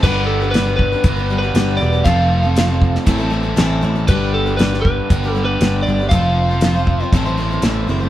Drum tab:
CC |x---------------|----------------|----------------|----------------|
HH |----x---x---x---|x---x---x---x---|x---x---x---x---|x---x---x---x---|
SD |----o-------o---|----o--o----o---|----oo------o---|----o-------o---|
BD |o-----o-o-------|o-----o-o-------|o-----o-o-------|o-----o-o-------|